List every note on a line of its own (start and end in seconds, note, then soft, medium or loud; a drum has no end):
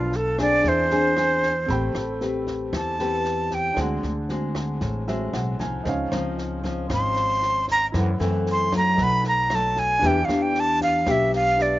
0.00 0.60 B1 medium
0.00 0.62 B2 medium
0.00 0.12 F3 medium
0.00 0.12 A3 medium
0.00 0.12 D4 medium
0.00 0.60 D4 medium
0.00 0.18 F4 medium
0.00 0.62 A4 soft
0.00 0.63 B4 medium
0.00 0.64 F5 medium
0.12 0.40 A4 medium
0.12 snare soft
0.38 0.86 C4 medium
0.38 0.87 D4 medium
0.38 0.87 G#4 medium
0.38 0.70 D5 loud
0.38 kick soft
0.38 cross-stick medium
0.38 snare soft
0.61 1.65 E2 medium
0.61 1.66 E3 medium
0.61 1.65 D4 soft
0.61 1.66 G#4 soft
0.61 kick medium
0.61 snare soft
0.65 1.67 C5 soft
0.65 2.23 C5 loud
0.65 1.68 E5 medium
0.90 1.13 C4 medium
0.90 1.13 D4 medium
0.90 1.13 G#4 medium
0.90 snare soft
1.16 1.52 C4 medium
1.16 1.52 D4 medium
1.16 1.52 G#4 medium
1.16 cross-stick medium
1.16 snare soft
1.43 kick soft
1.43 snare soft
1.66 1.93 A1 loud
1.66 2.70 A3 medium
1.66 3.72 C4 medium
1.66 2.02 C4 medium
1.66 2.02 G4 medium
1.66 3.73 A4 medium
1.66 kick medium
1.66 snare soft
1.70 3.75 G5 medium
1.70 3.74 B5 medium
1.95 2.69 A1 medium
1.95 cross-stick medium
1.95 snare soft
2.21 2.95 C4 medium
2.21 2.95 G4 medium
2.21 2.95 B4 medium
2.21 snare soft
2.47 kick soft
2.47 snare soft
2.73 3.73 E2 medium
2.73 3.75 E3 medium
2.73 3.56 A5 medium
2.73 kick medium
2.73 cross-stick medium
2.73 snare soft
2.99 3.73 C4 medium
2.99 3.74 G4 medium
2.99 3.74 B4 medium
2.99 snare soft
3.25 snare soft
3.51 3.79 G5 medium
3.51 kick soft
3.51 snare soft
3.74 4.01 D2 medium
3.74 4.79 D3 medium
3.74 4.11 G#3 medium
3.74 5.80 D4 medium
3.74 5.81 G#4 soft
3.74 5.82 C5 soft
3.74 kick medium
3.74 cross-stick medium
3.74 snare soft
3.78 4.11 C4 medium
3.78 4.11 F#4 medium
3.78 5.32 F#5 medium
4.03 4.77 D2 medium
4.03 snare soft
4.29 5.03 G#3 medium
4.29 5.04 C4 medium
4.29 5.04 F#4 medium
4.29 snare soft
4.55 kick soft
4.55 cross-stick medium
4.55 snare soft
4.81 5.30 A1 medium
4.81 5.83 A2 medium
4.81 kick medium
4.81 snare soft
5.07 5.56 G#3 medium
5.07 5.56 C4 medium
5.07 5.56 F#4 medium
5.07 5.32 E5 medium
5.07 snare soft
5.33 5.57 B1 medium
5.33 5.58 F#5 medium
5.33 cross-stick medium
5.33 snare soft
5.59 5.83 C2 medium
5.59 6.11 F3 medium
5.59 6.11 C4 medium
5.59 6.11 D#4 medium
5.59 5.84 G#5 medium
5.59 kick soft
5.59 snare soft
5.83 6.10 C#2 loud
5.83 6.87 C#3 medium
5.83 7.91 C#4 medium
5.83 7.89 D#4 medium
5.83 7.90 C5 medium
5.83 kick medium
5.83 snare soft
5.89 7.92 F5 medium
6.12 6.86 C#2 medium
6.12 6.60 F3 medium
6.12 6.60 C4 medium
6.12 6.60 D#4 medium
6.12 cross-stick medium
6.12 snare soft
6.38 snare soft
6.63 6.86 F3 medium
6.63 6.86 C4 medium
6.63 6.86 D#4 medium
6.63 kick soft
6.63 snare soft
6.89 7.90 G#1 medium
6.89 7.91 G#2 medium
6.89 7.60 F3 medium
6.89 7.60 C4 medium
6.89 7.60 D#4 medium
6.89 kick medium
6.89 cross-stick medium
6.89 snare soft
6.94 7.66 C6 loud
7.16 snare soft
7.42 snare soft
7.68 7.86 A#5 loud
7.68 kick soft
7.68 snare soft
7.92 8.18 F#2 loud
7.92 8.96 F#2 medium
7.92 8.09 E3 medium
7.92 8.10 A3 medium
7.92 8.10 C4 medium
7.92 8.95 E4 medium
7.92 8.96 A4 soft
7.92 8.97 C5 soft
7.92 kick medium
7.92 cross-stick medium
7.92 snare soft
7.98 8.98 F#5 medium
8.20 8.94 F#2 medium
8.20 8.68 E3 medium
8.20 8.68 A3 medium
8.20 8.68 C4 medium
8.20 snare soft
8.46 snare soft
8.52 8.73 C6 medium
8.72 9.46 F#3 medium
8.72 9.46 A3 medium
8.72 9.46 D#4 medium
8.72 kick soft
8.72 cross-stick medium
8.72 snare soft
8.77 9.05 A#5 medium
8.95 9.98 B1 loud
8.95 10.00 B2 medium
8.95 9.99 D#4 soft
8.95 10.00 A4 soft
8.95 kick medium
8.95 snare soft
8.99 10.01 B4 soft
8.99 10.02 F#5 medium
9.03 9.27 B5 loud
9.24 snare soft
9.28 9.57 A#5 loud
9.50 10.01 F#3 medium
9.50 10.01 A3 medium
9.50 10.01 D#4 medium
9.50 cross-stick medium
9.50 snare soft
9.55 9.80 A5 medium
9.76 10.08 G#5 loud
9.76 kick soft
9.76 snare soft
9.99 10.27 E2 loud
9.99 11.54 D4 medium
9.99 11.55 G4 medium
9.99 11.56 B4 soft
9.99 kick medium
9.99 snare soft
10.03 11.04 E3 medium
10.03 10.18 B3 medium
10.03 10.18 D4 medium
10.03 10.19 G4 medium
10.03 11.57 E5 medium
10.03 10.26 G5 medium
10.25 11.02 E2 medium
10.25 10.44 F5 medium
10.29 11.03 B3 medium
10.29 11.03 D4 medium
10.29 11.03 G4 medium
10.29 cross-stick medium
10.29 snare soft
10.42 10.61 G5 medium
10.55 snare soft
10.60 10.82 A5 loud
10.81 11.13 F5 loud
10.81 kick soft
10.81 snare soft
11.06 11.79 B1 medium
11.06 11.79 B2 medium
11.06 11.77 B3 soft
11.06 11.77 D4 medium
11.06 11.77 G4 medium
11.06 kick medium
11.06 cross-stick medium
11.06 snare soft
11.11 11.35 E5 medium
11.33 11.63 F5 loud
11.33 snare soft
11.57 11.79 D4 soft
11.57 11.79 G4 soft
11.57 11.79 B4 soft
11.57 11.79 E5 soft
11.57 snare soft
11.62 11.79 D5 medium